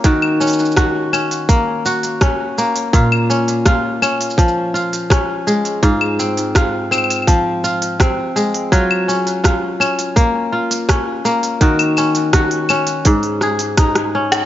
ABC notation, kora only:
X:1
M:4/4
L:1/8
Q:1/4=83
K:Ebdor
V:1 name="Kora"
[E,G] D G D B, G D B, | [B,,F] D F D F, F D A, | [A,,F] C F C F, F C A, | [G,F] D F D B, F D B, |
[E,G] D G D A,, A E D |]